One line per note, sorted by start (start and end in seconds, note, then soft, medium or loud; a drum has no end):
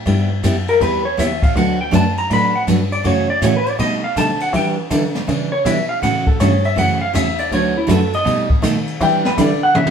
0.06 0.42 G2 medium
0.06 0.28 G3 medium
0.06 0.28 B3 medium
0.06 0.29 E4 medium
0.06 0.29 G4 medium
0.06 kick soft
0.06 ride medium
0.43 0.80 F#2 medium
0.43 0.55 G3 medium
0.43 0.55 B3 medium
0.43 0.55 E4 medium
0.43 0.56 G4 medium
0.43 kick soft
0.43 hi-hat pedal medium
0.43 ride medium
0.68 0.81 A#4 medium
0.68 ride soft
0.80 1.17 E2 medium
0.80 1.03 G3 medium
0.80 1.03 B3 medium
0.80 1.03 E4 medium
0.80 1.03 G4 medium
0.80 1.05 B4 medium
0.80 kick soft
0.80 ride medium
1.05 1.18 C#5 medium
1.17 1.41 D#2 medium
1.17 1.29 G3 medium
1.17 1.30 B3 medium
1.17 1.30 E4 medium
1.17 1.30 G4 medium
1.17 1.43 E5 medium
1.17 kick soft
1.17 hi-hat pedal medium
1.17 ride medium
1.42 1.55 D#2 soft
1.42 1.56 F5 medium
1.42 kick medium
1.42 ride soft
1.56 1.92 D2 medium
1.56 1.78 D3 medium
1.56 1.78 F#3 medium
1.56 1.78 A3 medium
1.56 1.78 D4 medium
1.56 1.78 F#4 medium
1.56 1.78 B4 medium
1.56 1.80 F#5 medium
1.56 kick soft
1.56 ride medium
1.81 1.93 G5 loud
1.91 2.29 F#2 medium
1.91 2.04 D3 medium
1.91 2.04 F#3 medium
1.91 2.04 A3 medium
1.91 2.04 D4 medium
1.91 2.04 F#4 medium
1.91 2.04 B4 medium
1.91 kick soft
1.91 hi-hat pedal medium
1.91 ride medium
1.95 2.18 A5 medium
2.17 2.30 A#5 loud
2.17 ride soft
2.30 2.66 A2 medium
2.30 2.52 D3 medium
2.30 2.53 F#3 medium
2.30 2.53 A3 medium
2.30 2.53 D4 medium
2.30 2.53 F#4 medium
2.30 2.53 B4 medium
2.30 2.55 B5 loud
2.30 kick soft
2.30 ride medium
2.55 2.63 F#5 medium
2.67 3.04 G2 medium
2.67 2.79 D3 medium
2.67 2.79 F#3 medium
2.67 2.79 A3 medium
2.67 2.79 D4 medium
2.67 2.80 F#4 medium
2.67 2.79 B4 medium
2.67 kick soft
2.67 hi-hat pedal medium
2.67 ride medium
2.92 3.05 D5 loud
2.92 ride medium
3.03 3.41 F#2 medium
3.03 3.26 C#3 medium
3.03 3.26 E3 medium
3.03 3.26 A3 medium
3.03 3.27 C#4 medium
3.03 3.27 F#4 medium
3.03 3.29 C#5 medium
3.03 kick soft
3.03 ride medium
3.30 3.42 D5 loud
3.42 3.78 A2 loud
3.42 3.53 C#3 medium
3.42 3.54 E3 medium
3.42 3.54 A3 medium
3.42 3.54 C#4 medium
3.42 3.54 F#4 medium
3.42 3.55 C#5 medium
3.42 kick soft
3.42 hi-hat pedal medium
3.42 ride medium
3.57 3.70 B4 medium
3.66 3.80 D5 loud
3.66 ride soft
3.79 4.01 B2 medium
3.79 4.15 B2 medium
3.79 4.01 G3 medium
3.79 4.01 A3 medium
3.79 4.01 D#4 medium
3.79 4.01 A4 medium
3.79 4.03 D#5 medium
3.79 kick soft
3.79 ride medium
4.04 4.16 F5 loud
4.16 4.28 B2 medium
4.16 4.52 D3 medium
4.16 4.28 G3 medium
4.16 4.29 A3 medium
4.16 4.29 D#4 medium
4.16 4.29 A4 medium
4.16 4.41 A5 loud
4.16 kick soft
4.16 hi-hat pedal medium
4.16 ride medium
4.40 4.54 F#5 medium
4.40 ride medium
4.53 4.75 E3 medium
4.53 4.90 E3 medium
4.53 4.76 G3 medium
4.53 4.76 D4 medium
4.53 4.76 E4 medium
4.53 4.76 B4 medium
4.53 4.70 G5 loud
4.53 kick soft
4.53 ride medium
4.90 5.27 D3 medium
4.90 5.02 E3 medium
4.90 5.03 G3 medium
4.90 5.03 D4 medium
4.90 5.03 E4 medium
4.90 5.03 B4 medium
4.90 kick soft
4.90 hi-hat pedal medium
4.90 ride medium
5.15 snare medium
5.15 ride soft
5.27 5.64 C#3 medium
5.27 5.50 E3 medium
5.27 5.50 G3 medium
5.27 5.50 D4 medium
5.27 5.50 E4 medium
5.27 5.50 B4 medium
5.27 kick soft
5.27 ride medium
5.52 5.65 C#5 loud
5.65 6.01 B2 medium
5.65 5.77 E3 medium
5.65 5.77 G3 medium
5.65 5.77 D4 medium
5.65 5.77 E4 medium
5.65 5.78 B4 medium
5.65 5.89 E5 medium
5.65 kick soft
5.65 hi-hat pedal medium
5.65 ride medium
5.89 6.02 F5 medium
6.02 6.39 A2 medium
6.02 6.24 C#3 medium
6.02 6.25 E3 medium
6.02 6.25 A3 medium
6.02 6.25 C#4 medium
6.02 6.25 F#4 medium
6.02 6.26 F#5 loud
6.02 kick soft
6.02 snare soft
6.02 ride medium
6.27 6.40 A4 medium
6.27 kick medium
6.40 6.76 G2 loud
6.40 6.52 C#3 medium
6.40 6.51 E3 medium
6.40 6.52 A3 medium
6.40 6.52 C#4 medium
6.40 6.52 F#4 medium
6.40 6.64 C#5 medium
6.40 kick soft
6.40 hi-hat pedal medium
6.40 ride medium
6.64 6.77 E5 loud
6.64 ride soft
6.76 7.13 F#2 medium
6.76 6.98 C#3 medium
6.76 6.99 E3 medium
6.76 6.99 A3 medium
6.76 6.99 C#4 medium
6.76 6.99 F#4 medium
6.76 7.01 F#5 loud
6.76 kick soft
6.76 ride medium
7.01 7.14 F5 loud
7.13 7.51 E2 medium
7.13 7.26 C#3 medium
7.13 7.26 E3 medium
7.13 7.26 A3 medium
7.13 7.26 C#4 medium
7.13 7.26 F#4 medium
7.13 7.38 E5 medium
7.13 kick soft
7.13 hi-hat pedal medium
7.13 ride medium
7.38 7.52 D5 medium
7.38 ride medium
7.51 7.88 D2 medium
7.51 7.74 D3 medium
7.51 7.74 F#3 medium
7.51 7.74 A3 medium
7.51 7.74 D4 medium
7.51 7.74 F#4 medium
7.51 7.74 B4 medium
7.51 7.76 C#5 medium
7.51 kick soft
7.51 ride medium
7.77 7.89 E4 medium
7.87 8.11 F#2 loud
7.87 7.99 D3 medium
7.87 8.00 F#3 medium
7.87 8.00 A3 medium
7.87 8.00 D4 medium
7.87 8.00 F#4 medium
7.87 8.00 B4 medium
7.87 kick soft
7.87 hi-hat pedal medium
7.87 ride medium
7.91 8.13 A4 medium
8.13 8.25 F#2 soft
8.13 8.49 D#5 loud
8.13 ride soft
8.24 8.47 B2 medium
8.24 8.62 B2 medium
8.24 8.47 G3 medium
8.24 8.48 A3 medium
8.24 8.48 D#4 medium
8.24 8.48 A4 medium
8.24 kick soft
8.24 ride medium
8.50 kick medium
8.62 8.74 B2 medium
8.62 8.99 D#3 medium
8.62 8.74 G3 medium
8.62 8.75 A3 medium
8.62 8.75 D#4 medium
8.62 8.75 A4 medium
8.62 kick soft
8.62 hi-hat pedal medium
8.62 ride medium
8.87 ride medium
9.00 9.23 E3 medium
9.00 9.37 E3 medium
9.00 9.23 G3 medium
9.00 9.23 D4 medium
9.00 9.23 E4 medium
9.00 9.23 B4 medium
9.00 9.25 G5 medium
9.00 kick soft
9.00 ride medium
9.25 9.38 B4 medium
9.25 snare medium
9.38 9.74 D3 loud
9.38 9.49 E3 medium
9.38 9.50 G3 medium
9.38 9.50 D4 medium
9.38 9.50 E4 medium
9.38 9.50 B4 medium
9.38 9.63 D5 medium
9.38 kick soft
9.38 hi-hat pedal medium
9.38 ride medium
9.63 9.75 F#5 loud
9.75 9.90 C#3 loud
9.75 9.90 C#3 medium
9.75 9.90 E3 medium
9.75 9.90 A3 medium
9.75 9.90 C#4 medium
9.75 9.90 F#4 medium
9.75 9.90 E5 loud
9.75 high tom medium
9.87 high tom medium